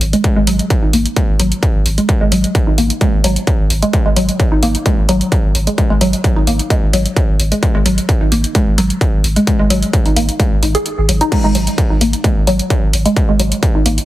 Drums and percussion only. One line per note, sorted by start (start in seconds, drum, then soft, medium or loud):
0.01 open hi-hat loud
0.13 closed hi-hat medium
0.24 kick loud
0.24 closed hi-hat medium
0.47 open hi-hat loud
0.59 closed hi-hat medium
0.70 kick loud
0.70 closed hi-hat medium
0.93 open hi-hat loud
1.06 closed hi-hat medium
1.16 kick loud
1.16 closed hi-hat medium
1.40 open hi-hat loud
1.52 closed hi-hat medium
1.63 kick loud
1.63 closed hi-hat medium
1.86 open hi-hat loud
1.98 closed hi-hat medium
2.09 kick loud
2.09 closed hi-hat medium
2.32 open hi-hat loud
2.44 closed hi-hat medium
2.55 kick loud
2.55 closed hi-hat medium
2.78 open hi-hat loud
2.90 closed hi-hat medium
3.01 kick loud
3.01 closed hi-hat medium
3.24 open hi-hat loud
3.36 closed hi-hat medium
3.47 kick loud
3.47 closed hi-hat medium
3.70 open hi-hat loud
3.82 closed hi-hat medium
3.93 kick loud
3.93 closed hi-hat medium
4.16 open hi-hat loud
4.29 closed hi-hat medium
4.40 kick loud
4.40 closed hi-hat medium
4.63 open hi-hat loud
4.75 closed hi-hat medium
4.86 kick loud
4.86 closed hi-hat medium
5.09 open hi-hat loud
5.21 closed hi-hat medium
5.32 kick loud
5.32 closed hi-hat medium
5.55 open hi-hat loud
5.67 closed hi-hat medium
5.78 kick loud
5.78 closed hi-hat medium
6.01 open hi-hat loud
6.13 closed hi-hat medium
6.24 kick loud
6.24 closed hi-hat medium
6.47 open hi-hat loud
6.59 closed hi-hat medium
6.70 kick loud
6.70 closed hi-hat medium
6.93 open hi-hat loud
7.06 closed hi-hat medium
7.16 kick loud
7.16 closed hi-hat medium
7.40 open hi-hat loud
7.52 closed hi-hat medium
7.63 kick loud
7.63 closed hi-hat medium
7.86 open hi-hat loud
7.98 closed hi-hat medium
8.09 kick loud
8.09 closed hi-hat medium
8.32 open hi-hat loud
8.44 closed hi-hat medium
8.55 kick loud
8.55 closed hi-hat medium
8.78 open hi-hat loud
8.90 closed hi-hat medium
9.01 kick loud
9.01 closed hi-hat medium
9.24 open hi-hat loud
9.36 closed hi-hat medium
9.47 kick loud
9.47 closed hi-hat medium
9.70 open hi-hat loud
9.83 closed hi-hat medium
9.93 kick loud
9.93 closed hi-hat medium
10.06 open hi-hat medium
10.16 open hi-hat loud
10.29 closed hi-hat medium
10.40 kick loud
10.40 closed hi-hat medium
10.63 open hi-hat loud
10.75 closed hi-hat medium
10.86 closed hi-hat medium
11.09 open hi-hat loud
11.21 closed hi-hat medium
11.32 kick loud
11.32 closed hi-hat medium
11.32 crash medium
11.55 open hi-hat loud
11.67 closed hi-hat medium
11.78 kick loud
11.78 closed hi-hat medium
12.01 open hi-hat loud
12.13 closed hi-hat medium
12.24 kick loud
12.24 closed hi-hat medium
12.47 open hi-hat loud
12.59 closed hi-hat medium
12.70 kick loud
12.70 closed hi-hat medium
12.93 open hi-hat loud
13.06 closed hi-hat medium
13.16 kick loud
13.16 closed hi-hat medium
13.40 open hi-hat loud
13.52 closed hi-hat medium
13.63 kick loud
13.63 closed hi-hat medium
13.86 open hi-hat loud
13.98 closed hi-hat medium